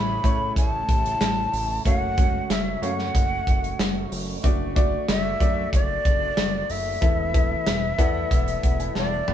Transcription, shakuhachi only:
0.00 0.53 B5 medium
0.57 1.82 A5 loud
1.86 1.98 F5 loud
1.98 2.53 F#5 loud
2.51 2.85 E5 medium
2.84 2.96 F5 loud
2.96 4.12 F#5 loud
5.10 5.70 E5 loud
5.74 6.73 D5 loud
6.71 8.96 E5 loud
8.98 9.34 D5 medium

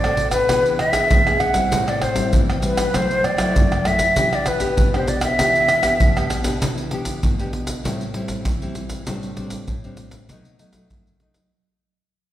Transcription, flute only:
0.00 0.32 D5 loud
0.32 0.76 B4 loud
0.79 1.41 E5 loud
1.40 1.90 F#5 loud
1.88 2.04 D5 medium
2.02 2.36 C5 medium
2.65 2.97 B4 medium
2.95 3.26 C5 medium
3.25 3.88 D5 medium
3.87 4.36 E5 medium
4.35 4.49 D5 medium
4.48 4.93 B4 medium
4.96 5.10 C5 medium
5.09 5.23 D5 medium
5.23 6.27 E5 medium

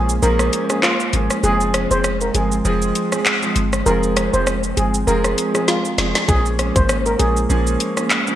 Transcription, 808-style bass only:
0.00 0.20 A#1 loud
0.22 0.50 A#1 loud
1.13 1.29 G#1 medium
1.43 1.87 F1 loud
1.91 2.31 F1 medium
2.35 2.62 G1 medium
2.65 2.92 F1 loud
3.56 3.83 G1 loud
3.86 4.29 F1 loud
4.34 4.73 F1 medium
4.77 5.04 G1 medium
5.07 5.35 F1 loud
5.98 6.14 F1 loud
6.29 6.72 A#1 loud
6.76 7.16 G#1 medium
7.20 7.47 A#1 medium
7.50 7.77 A#1 loud

